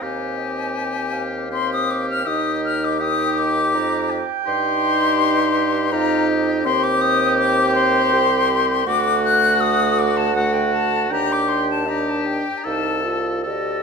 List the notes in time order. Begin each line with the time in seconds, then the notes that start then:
0.01 D#2 C4 G4 F5 G#5
0.37 D#5
0.75 C5
1.12 F5
1.51 C4 G4 C6
1.73 D#6
1.91 D6
2.09 F6
2.25 D#2 D#4 G4 D#5 D#6
2.64 F6
2.84 D6
2.99 D#4 G4 G5 D#6
3.38 D6
3.74 F2 A#5
4.10 G5
4.45 G2 D#4 G4 C6
5.92 F2 D#4 G4 F5 A#5
6.29 D#5
6.65 D#2 C4 G4 G5 C6
6.83 D6
7.01 D#6
7.38 D6
7.75 C6
8.13 C2
8.86 D2 A3 F#4 F#5 D6
9.24 F#6
9.60 D#6
9.98 D6
10.17 A5
10.35 A3 F#4 F#5
10.53 G5
10.72 A5
11.10 D#2 D4 G4 G5 A#5
11.32 D6
11.48 C6
11.70 A5
11.86 D4 G4 D#5 A#5
12.09 A5
12.26 G5
12.57 A#5
12.64 C2 D#4 A4 F5 A5
13.04 F4 D#5
13.44 D2 G4 A4 D5 D#5